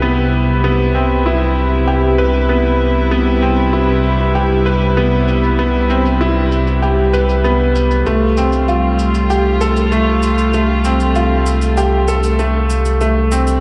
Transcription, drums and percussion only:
1.57 shaker medium
2.19 shaker medium
2.80 shaker medium
2.96 shaker soft
3.42 shaker medium
3.58 shaker soft
3.73 shaker soft
4.04 shaker medium
4.20 shaker soft
4.35 shaker soft
4.66 shaker medium
4.82 shaker soft
4.97 shaker soft
5.28 shaker medium
5.43 shaker soft
5.59 shaker soft
5.90 shaker medium
6.05 shaker soft
6.21 shaker soft
6.52 shaker medium
6.67 shaker soft
6.83 shaker soft
7.14 shaker medium
7.29 shaker soft
7.45 shaker soft
7.75 shaker medium
7.91 shaker soft
8.06 shaker soft
8.37 shaker medium
8.53 shaker soft
8.68 shaker soft
8.99 shaker medium
9.15 shaker soft
9.30 shaker soft
9.61 shaker medium
9.77 shaker soft
9.92 shaker soft
10.23 shaker medium
10.38 shaker soft
10.53 shaker soft
10.85 shaker medium
11.00 shaker soft
11.15 shaker soft
11.46 shaker medium
11.62 shaker soft
11.77 shaker soft
12.08 shaker medium
12.23 shaker soft
12.39 shaker soft
12.70 shaker medium
12.85 shaker soft
13.01 shaker soft
13.32 shaker medium
13.47 shaker soft

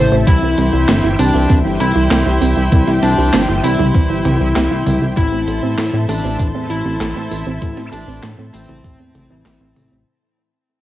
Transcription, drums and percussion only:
0.27 kick loud
0.27 closed hi-hat medium
0.58 closed hi-hat medium
0.89 snare loud
0.89 clap loud
0.89 closed hi-hat medium
1.19 open hi-hat medium
1.50 kick loud
1.50 closed hi-hat medium
1.80 closed hi-hat medium
2.11 snare loud
2.11 clap loud
2.11 closed hi-hat medium
2.42 open hi-hat medium
2.72 kick loud
2.72 closed hi-hat medium
2.87 snare soft
3.03 closed hi-hat medium
3.33 snare loud
3.33 clap loud
3.33 closed hi-hat medium
3.64 open hi-hat medium
3.79 mid tom medium
3.95 kick loud
3.95 closed hi-hat medium
4.25 closed hi-hat medium
4.25 mid tom loud
4.56 snare loud
4.56 clap loud
4.56 closed hi-hat loud
4.86 open hi-hat medium
4.86 mid tom loud
5.17 kick loud
5.17 closed hi-hat medium
5.48 closed hi-hat medium
5.78 snare loud
5.78 clap loud
5.78 closed hi-hat loud
6.09 open hi-hat medium
6.40 kick loud
6.40 closed hi-hat medium
6.70 closed hi-hat medium
7.01 snare loud
7.01 clap loud
7.01 closed hi-hat loud
7.31 open hi-hat medium
7.62 kick loud
7.62 closed hi-hat loud
7.77 snare soft
7.93 closed hi-hat medium
8.23 snare loud
8.23 clap loud
8.23 closed hi-hat loud
8.54 open hi-hat medium
8.69 mid tom medium
8.84 kick loud
8.84 closed hi-hat loud
9.15 closed hi-hat medium
9.15 mid tom medium
9.46 snare loud
9.46 clap loud
9.46 closed hi-hat loud
9.76 open hi-hat medium
9.76 mid tom loud

